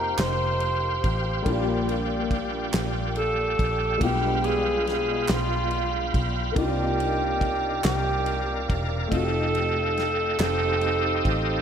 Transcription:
Already playing: F1 A#3 C4 D#4 F4 G4 A#4 C5 F5 G5
0.18 F1 C5, snare, clap, ride
0.60 ride
1.04 A1, kick, ride
1.42 A#1 A#2 G3 A#3 D5, kick, ride
1.46 D4 F4 G4
1.89 ride
2.31 kick, ride
2.73 A#1, snare, clap, ride
3.16 A4, ride
3.59 A#1, kick, ride
3.97 B1 B2 G#3 A#3, kick
4.01 G3 D4 F4 G4 G5 B5, ride
4.06 B3
4.44 G#4, ride
4.87 G#4, snare, ride
5.28 B1 F4, snare, clap, ride
5.71 ride
6.14 B1, kick, ride
6.52 C3 A#3 C4 D4
6.56 C2 D#4 F4 G4 A#4 D5 F5, kick, ride
7.00 ride
7.41 kick, ride
7.83 C2 G4, snare, clap, ride
8.26 ride
8.70 E1, kick, ride
9.07 A3 C4 D#4 A4
9.11 F1 F4 F#4 A4 D#5 G5, kick, ride
9.22 G4
9.55 ride
9.97 snare, ride
10.39 F1 C4 D#4 G4 A4, snare, clap, ride
10.81 ride
11.25 A1, kick, ride

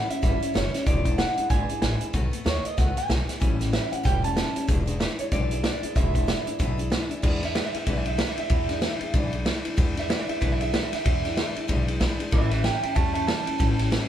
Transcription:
Already playing: F#5
0.09 G3 C#4 E4 E5, muted upright bass stroke, closed hi-hat
0.22 G1 A2 E3 G3 C#4 E4 E5, kick, snare, closed hi-hat
0.40 G3 C#4 E4, closed hi-hat
0.53 F#1 E3 G3 C#4 E4 C#5, snare, closed hi-hat
0.72 G3 C#4 E4, snare, closed hi-hat
0.86 E1 E2 B2 E3 G#3 D4 E4 D5, kick, closed hi-hat
1.05 E3 G#3 D4 E4, kick, closed hi-hat
1.18 E3 G#3 D4 E4 F#5, snare, closed hi-hat
1.37 E3 G#3 D4 E4, muted upright bass stroke, closed hi-hat
1.50 G#1 E2 B2 E3 G#3 D4 E4 G#5, kick, closed hi-hat
1.69 E3 G#3 D4 E4, muted upright bass stroke, closed hi-hat
1.82 A1 E3 G#3 D4 E4 G#5, snare, closed hi-hat
2.01 E3 G#3 D4 E4, muted upright bass stroke, closed hi-hat
2.13 B1 B2 D#3 A3 B3 F#4, kick, closed hi-hat
2.31 A3 B3 F#4, muted upright bass stroke, closed hi-hat
2.44 D#2 D#3 A3 B3 F#4 C#5, snare, closed hi-hat
2.64 A3 B3 F#4 D#5, closed hi-hat
2.77 C#2 B2 D#3 A3 B3 F#4 F#5, kick, snare, closed hi-hat
2.96 A3 B3 F#4 G#5, muted upright bass stroke, closed hi-hat
3.08 B1 D#3 A3 B3 F#4, snare, closed hi-hat
3.28 A3 B3 F#4, muted upright bass stroke, snare, closed hi-hat
3.40 A1 A2 E3 G3 C#4 E4, kick, closed hi-hat
3.59 G3 C#4 E4, snare, closed hi-hat
3.72 E3 G3 C#4 E4 E5, snare, closed hi-hat
3.91 G3 C#4 E4 F#5, muted upright bass stroke, closed hi-hat
4.03 E1 A2 E3 G3 C#4 E4 G5, kick, snare, closed hi-hat
4.22 G3 C#4 E4 A5, closed hi-hat
4.35 E3 G3 C#4 E4, snare, closed hi-hat
4.54 G3 C#4 E4, muted upright bass stroke, closed hi-hat
4.67 E1 E2 B2 E3 G#3 D4 E4, kick, closed hi-hat
4.86 E3 G#3 D4 E4, closed hi-hat
4.99 E3 G#3 D4 E4 B4, snare, closed hi-hat
5.19 E3 G#3 D4 E4 C#5, muted upright bass stroke, closed hi-hat
5.31 B1 E2 B2 E3 G#3 D4 E4 D5, kick, closed hi-hat
5.51 E3 G#3 D4 E4, closed hi-hat
5.64 E3 G#3 D4 E4 D5, snare, closed hi-hat
5.82 E3 G#3 D4 E4, muted upright bass stroke, closed hi-hat
5.95 E1 E2 B2 E3 G#3 D4 E4 E5, kick, closed hi-hat
6.14 E3 G#3 D4 E4, kick, closed hi-hat
6.26 E3 G#3 D4 E4, snare, closed hi-hat
6.46 E3 G#3 D4 E4, muted upright bass stroke, closed hi-hat
6.59 B1 E2 B2 E3 G#3 D4 E4, kick, closed hi-hat
6.77 E3 G#3 D4 E4, closed hi-hat
6.90 E3 G#3 D4 E4, snare, closed hi-hat
7.09 E3 G#3 D4 E4, muted upright bass stroke, closed hi-hat
7.22 E2 B2 E3 G#3 D4 E4, kick, crash
7.42 E3 G#3 D4 E4 E5, snare, ride
7.54 E3 G#3 D4 E4 B4, snare, ride
7.66 E5
7.73 E3 G#3 D4 E4 E5, muted upright bass stroke, ride
7.86 B1 E2 B2 E3 G#3 D4 E4 B4, kick, ride
7.97 E5
8.05 E3 G#3 D4 E4 E5, ride
8.17 E3 G#3 D4 E4 B4, snare, ride
8.29 E5
8.37 E3 G#3 D4 E4 E5, muted upright bass stroke, ride
8.50 E2 B2 E3 G#3 D4 E4, kick, ride
8.69 E3 G#3 D4 E4, snare, ride
8.81 E3 G#3 D4 E4, snare, ride
9.00 E3 G#3 D4 E4, muted upright bass stroke, ride
9.13 B1 E2 B2 E3 G#3 D4 E4, kick, ride
9.32 E3 G#3 D4 E4, ride
9.45 E3 G#3 D4 E4, snare, ride
9.65 E3 G#3 D4 E4, muted upright bass stroke, ride
9.76 E2 B2 E3 G#3 D4 E4, kick, ride
9.95 E3 G#3 D4 E4 E5, snare, ride
10.08 E3 G#3 D4 E4 B4, snare, ride
10.19 E5
10.28 E3 G#3 D4 E4 E5, muted upright bass stroke, ride
10.41 B1 E2 B2 E3 G#3 D4 E4 B4, kick, ride
10.52 E5
10.60 E3 G#3 D4 E4 E5, ride
10.73 E3 G#3 D4 E4 B4, snare, ride
10.83 E5
10.92 E3 G#3 D4 E4 E5, muted upright bass stroke, snare, ride
11.04 E2 B2 E3 G#3 D4 E4, kick, ride
11.24 E3 G#3 D4 E4, snare, ride
11.36 E3 G#3 D4 E4, snare, ride
11.55 E3 G#3 D4 E4, muted upright bass stroke, ride
11.68 B1 E2 B2 E3 G#3 D4 E4, kick, ride
11.87 E3 G#3 D4 E4, ride
12.00 E3 G#3 D4 E4, kick, snare, ride
12.18 E3 G#3 D4 E4, muted upright bass stroke, ride
12.31 A1 A2 E3 G3 C#4 E4 B4 E5, kick, ride
12.50 G3 C#4 E4 B4 E5, snare, ride
12.63 E3 G3 C#4 E4 E5 G5, snare, ride
12.82 G3 C#4 E4 E5 G5, muted upright bass stroke, ride
12.95 E2 A2 E3 G3 C#4 E4 E5 A5, kick, ride
13.14 G3 C#4 E4 E5 A5, ride
13.27 E3 G3 C#4 E4 A5, snare, ride
13.46 G3 C#4 E4, muted upright bass stroke, ride
13.59 A1 A2 E3 G3 C#4 E4, kick, snare, ride
13.77 G3 C#4 E4, snare, ride
13.90 E3 G3 C#4 E4, snare, ride

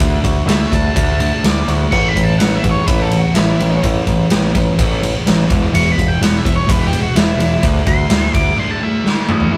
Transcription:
0.00 D2 D3 A3 D4, kick, ride
0.24 D2 D3 A3 F#4, kick, ride
0.46 D2 D3 A3 E5, snare, ride
0.72 D2 D3 A3 D4 A5, kick, ride
0.96 D2 D3 A3 D4, kick, ride
1.20 D3 A3 D4 A5, ride
1.44 D2 D3 A3 D5, snare, ride
1.68 D2 D3 A3 F#4, ride
1.91 A1 A2 E3 A3 C#6, kick, crash
2.08 B5
2.16 A1 A2 E3, kick, ride
2.24 A5
2.39 A1 A2 E3 F#5, snare, ride
2.55 E5
2.64 A1 A2 E3, kick, ride
2.71 C#5
2.86 A1 A2 E3 A3 B4, kick, ride
3.02 A4
3.10 A2 E3, ride
3.17 F#4
3.34 A1 A2 E3 E4, snare, ride
3.60 A1 A2 E3, ride
3.83 A1 A2 E3 A3, kick, ride
4.07 A1 A2 E3, kick, ride
4.30 A1 A2 E3, snare, ride
4.54 A1 A2 E3, kick, ride
4.78 A1 A2 E3 A3, kick, ride
5.02 A2 E3, ride
5.27 A1 A2 E3, snare, ride
5.49 E1 E2 B2 E3 G#3 B3, kick, ride
5.73 E1 E2 B2 E3 G#3 B3 C#6, ride
5.92 B5
5.97 E1 E2 B2 E3 G#3, kick, ride
6.08 G5
6.21 E1 E2 B2 E3 G#3 F#5, snare, ride
6.38 E5
6.44 E1 E2 B2 E3 G#3, kick, ride
6.56 C#5
6.67 E1 E2 B2 E3 G#3 B3 B4, kick, ride
6.87 G4
6.92 E2 B2 E3 G#3, ride
7.02 F#4
7.15 E1 E2 B2 E3 G#3 E4, snare, ride
7.37 E1 E2 B2 E3 G#3, ride
7.63 D2 D3 A3 D4, kick, ride
7.87 D2 D3 A3 C6, kick, ride
8.10 D2 D3 A3, snare, ride
8.34 D2 D3 A3 D6, kick, ride
8.56 D3 A3 D4 C6
8.71 A5
8.79 D3 A3 E5
9.05 D3 A3 F#4 D5 F#5, snare
9.29 D3 A3 E4 E5, mid tom
9.40 floor tom
9.51 E3 G#3 B3 E4

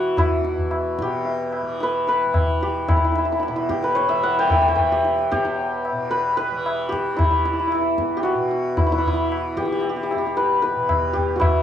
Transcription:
Already playing: E2 B2 E3 E4 F#4 B4
0.17 E4, tabla na, tabla ge
0.40 E2
0.45 tabla te
0.58 tabla ge
0.71 tabla na
0.99 B2 G4, tabla ke
1.25 tabla tin
1.53 tabla na
1.62 E3
1.80 B4, tabla te
2.08 B4, tabla te
2.25 E3
2.34 tabla na, tabla ge
2.61 G4, tabla te
2.87 E2 E4, tabla na, tabla ge
2.97 E4
3.04 E4
3.12 E4, tabla te
3.18 E4
3.25 E4
3.32 E4
3.39 E4, tabla te
3.48 B2 E4
3.56 E4, tabla te
3.69 G4, tabla ke
3.83 B4, tabla te
3.95 C#5, tabla te
4.08 E3 E5
4.23 F#5, tabla te
4.39 G5
4.47 G5, tabla na, tabla ge
4.52 G5
4.62 G5
4.68 E3 G5
4.75 G5, tabla ge
4.92 G4
5.05 tabla te
5.19 tabla te
5.32 E2 G4, tabla ke
5.45 tabla te
5.58 tabla tin
5.85 tabla na
5.92 B2
6.11 B4, tabla te
6.37 B4, tabla te
6.51 E3
6.66 tabla na
6.89 G4, tabla ke
7.13 E3 E4
7.19 tabla na, tabla ge
7.24 E4
7.30 E4
7.39 E4
7.45 E4, tabla te
7.53 E4
7.59 E4
7.67 E4
7.72 E2 E4, tabla na
7.81 E4
7.98 tabla ke
8.17 G4
8.23 F#4, tabla te
8.35 B2
8.51 tabla te
8.77 E4, tabla na, tabla ge
8.86 E4
8.92 E3 E4
8.98 E4
9.06 E4, tabla ge
9.13 E4
9.32 tabla na
9.56 E3 G4, tabla ke
9.65 G4
9.72 G4
9.80 G4, tabla tin
9.89 G4
9.96 G4
10.03 G4
10.11 E2 G4, tabla na
10.18 G4
10.26 G4
10.37 B4, tabla te
10.62 B4, tabla te
10.76 B2
10.89 tabla na, tabla ge
11.13 G4, tabla ge
11.35 E3 F#4
11.40 E4, tabla na, tabla ge

